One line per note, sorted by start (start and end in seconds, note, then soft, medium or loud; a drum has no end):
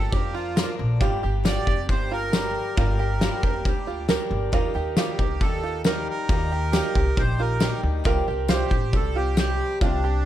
0.00 0.12 F3 soft
0.00 0.13 A#3 soft
0.00 0.14 D4 medium
0.00 1.12 F4 medium
0.00 0.34 G4 medium
0.00 0.12 A4 loud
0.00 0.13 A#4 medium
0.11 0.62 F2 medium
0.11 0.35 F3 medium
0.11 0.36 A#3 medium
0.11 0.35 D4 medium
0.11 0.35 G4 medium
0.11 kick medium
0.16 0.33 A#4 medium
0.33 0.57 D4 medium
0.33 0.75 F4 medium
0.33 0.56 F4 medium
0.33 0.57 A#4 medium
0.37 0.57 F3 soft
0.37 0.57 A#3 soft
0.56 1.01 A#2 medium
0.56 1.00 D3 medium
0.56 1.02 F3 medium
0.56 1.02 A#3 medium
0.56 1.02 D4 medium
0.56 1.00 A#4 medium
0.56 1.03 A#4 medium
0.56 snare loud
0.56 tambourine loud
0.79 0.96 A#1 loud
1.00 1.17 G1 loud
1.00 1.23 G2 medium
1.00 1.24 D3 medium
1.00 1.24 G3 medium
1.00 1.23 A#3 medium
1.00 1.22 D4 loud
1.00 1.22 F4 medium
1.00 4.18 G4 medium
1.00 1.22 G4 loud
1.00 kick loud
1.23 1.57 G1 medium
1.23 1.44 G3 medium
1.23 1.44 A#3 medium
1.23 1.45 D4 medium
1.23 1.45 G4 medium
1.44 1.67 G2 medium
1.44 1.67 D3 medium
1.44 1.67 G3 medium
1.44 1.67 A#3 medium
1.44 1.67 D4 medium
1.44 1.67 F4 medium
1.44 1.67 G4 medium
1.44 1.87 D5 loud
1.44 snare loud
1.44 tambourine loud
1.66 1.89 F1 medium
1.66 1.89 A#3 medium
1.66 1.90 D4 medium
1.66 2.10 G4 medium
1.66 1.90 G4 medium
1.66 kick medium
1.71 1.88 G3 medium
1.89 2.55 G1 medium
1.89 2.11 G3 medium
1.89 2.12 A#3 medium
1.89 2.11 D4 medium
1.89 2.10 G4 medium
1.89 2.12 C5 loud
1.89 kick loud
2.11 2.33 G3 soft
2.11 2.34 A#3 medium
2.11 2.34 D4 medium
2.11 2.33 F4 medium
2.11 2.33 G4 medium
2.11 2.77 A#4 loud
2.33 2.75 G2 medium
2.33 2.77 D3 medium
2.33 2.78 G3 medium
2.33 2.78 A#3 medium
2.33 2.78 D4 medium
2.33 2.78 G4 medium
2.33 2.76 A#4 medium
2.33 snare loud
2.33 tambourine loud
2.77 3.27 G1 loud
2.77 2.99 G2 medium
2.77 3.00 D3 medium
2.77 3.00 G3 medium
2.77 3.00 A#3 medium
2.77 2.98 D4 medium
2.77 2.99 F4 medium
2.77 2.97 G4 medium
2.77 3.69 A#4 medium
2.77 kick loud
2.98 3.21 G3 soft
2.98 3.22 A#3 soft
2.98 3.21 D4 medium
2.98 3.21 G4 soft
2.98 3.21 G4 medium
3.21 3.43 G2 medium
3.21 3.43 D3 medium
3.21 3.44 G3 medium
3.21 3.43 A#3 medium
3.21 3.42 D4 medium
3.21 3.43 F4 medium
3.21 3.41 G4 loud
3.21 snare loud
3.21 tambourine medium
3.43 3.60 F1 medium
3.43 3.64 G3 soft
3.43 3.65 A#3 medium
3.43 3.65 D4 medium
3.43 3.65 G4 medium
3.43 3.87 G4 medium
3.43 kick medium
3.65 4.15 D2 medium
3.65 3.87 G3 medium
3.65 3.88 A#3 medium
3.65 3.87 D4 medium
3.65 4.07 G4 medium
3.65 3.85 G4 medium
3.65 kick medium
3.87 4.08 G3 soft
3.87 4.08 A#3 medium
3.87 4.09 D4 soft
3.87 4.09 F4 medium
3.87 4.09 G4 medium
4.08 4.53 G2 medium
4.08 4.52 D3 medium
4.08 4.52 G3 medium
4.08 4.53 A#3 medium
4.08 4.53 D4 medium
4.08 4.53 G4 medium
4.08 4.53 A#4 medium
4.08 snare loud
4.08 tambourine medium
4.31 4.48 G1 loud
4.52 4.70 D#2 loud
4.52 4.75 D#3 medium
4.52 4.75 G3 medium
4.52 4.75 A#3 medium
4.52 4.74 D#4 loud
4.52 4.75 F4 medium
4.52 4.73 G4 medium
4.52 6.81 A#4 medium
4.52 kick loud
4.74 5.08 D#2 medium
4.74 4.97 A#3 medium
4.74 4.98 D#4 medium
4.74 4.97 G4 medium
4.97 5.19 D#3 medium
4.97 5.20 G3 medium
4.97 5.20 A#3 medium
4.97 5.19 D#4 medium
4.97 5.19 F4 medium
4.97 5.43 G4 medium
4.97 5.18 G4 medium
4.97 snare loud
4.97 tambourine loud
5.19 5.41 C2 medium
5.19 5.42 A#3 soft
5.19 5.42 D#4 medium
5.19 5.62 G4 medium
5.19 5.41 G4 medium
5.19 kick medium
5.41 6.08 D#2 medium
5.41 5.64 G3 medium
5.41 5.64 A#3 medium
5.41 5.65 D#4 medium
5.41 5.82 A4 medium
5.41 kick loud
5.45 5.62 G4 medium
5.63 5.85 A#3 soft
5.63 5.86 D#4 soft
5.63 5.85 F4 medium
5.63 5.86 G4 medium
5.84 6.28 D#3 medium
5.84 6.30 G3 medium
5.84 6.30 A#3 medium
5.84 6.30 D#4 medium
5.84 6.31 G4 medium
5.84 6.08 A#4 medium
5.84 6.29 A#4 medium
5.84 snare loud
5.84 tambourine loud
6.09 7.22 A#4 loud
6.29 6.79 D#2 loud
6.29 6.52 D#3 medium
6.29 6.52 G3 medium
6.29 6.52 A#3 medium
6.29 6.53 D#4 medium
6.29 6.51 F4 medium
6.29 6.51 G4 medium
6.29 kick loud
6.52 6.74 A#3 soft
6.52 6.74 D#4 soft
6.52 6.73 G4 medium
6.52 6.74 G4 medium
6.72 6.96 D#3 medium
6.72 6.96 G3 loud
6.72 6.96 A#3 loud
6.72 6.96 D#4 loud
6.72 6.95 F4 medium
6.72 8.09 G4 medium
6.72 6.94 G4 loud
6.72 snare loud
6.72 tambourine medium
6.95 7.12 C2 medium
6.95 7.16 A#3 soft
6.95 7.18 G4 medium
6.95 7.39 G4 medium
6.95 kick medium
7.16 7.67 A#1 loud
7.16 7.39 G3 medium
7.16 7.40 A#3 medium
7.16 7.39 D#4 medium
7.16 7.41 C5 loud
7.16 kick loud
7.20 7.38 G4 medium
7.39 7.60 A#3 soft
7.39 7.62 D#4 medium
7.39 7.61 F4 medium
7.39 7.61 G4 medium
7.39 7.81 A#4 loud
7.60 8.03 D#3 medium
7.60 8.04 G3 medium
7.60 8.05 A#3 medium
7.60 8.06 D#4 loud
7.60 8.06 G4 loud
7.60 8.05 A#4 medium
7.60 snare loud
7.60 tambourine medium
7.83 8.00 D2 loud
8.04 8.22 C2 loud
8.04 8.27 C3 medium
8.04 8.27 G3 loud
8.04 8.28 C4 loud
8.04 8.28 D4 medium
8.04 8.27 F4 medium
8.04 8.26 G4 loud
8.04 8.52 A#4 loud
8.04 kick loud
8.27 8.61 C2 medium
8.27 8.49 C4 medium
8.27 8.50 D4 medium
8.27 8.50 G4 medium
8.27 8.49 G4 medium
8.48 8.71 C3 medium
8.48 8.72 G3 medium
8.48 8.72 C4 medium
8.48 8.72 D4 medium
8.48 8.71 F4 medium
8.48 8.96 G4 medium
8.48 8.70 G4 medium
8.48 10.25 C5 loud
8.48 snare loud
8.48 tambourine medium
8.71 8.93 A1 medium
8.71 8.94 C4 soft
8.71 8.95 D4 soft
8.71 9.15 G4 medium
8.71 8.94 G4 medium
8.71 kick medium
8.93 9.60 C2 medium
8.93 9.16 G3 medium
8.93 9.17 C4 medium
8.93 9.16 D4 medium
8.93 9.17 A4 loud
8.93 kick loud
8.97 9.14 G4 medium
9.15 9.38 C4 medium
9.15 9.39 D4 soft
9.15 9.37 F4 medium
9.15 9.38 G4 medium
9.15 9.36 G4 loud
9.37 9.80 C3 medium
9.37 9.81 G3 medium
9.37 9.81 C4 medium
9.37 9.83 D4 medium
9.37 9.81 G4 medium
9.37 9.79 G4 loud
9.37 9.82 G4 medium
9.37 snare loud
9.37 tambourine loud
9.81 10.25 C2 loud
9.81 10.04 C3 medium
9.81 10.04 G3 medium
9.81 10.04 C4 medium
9.81 10.03 D4 medium
9.81 10.25 D4 medium
9.81 10.03 F4 medium
9.81 10.02 G4 medium
9.81 kick loud
10.03 10.25 C4 soft
10.03 10.25 D4 medium
10.03 10.25 G4 medium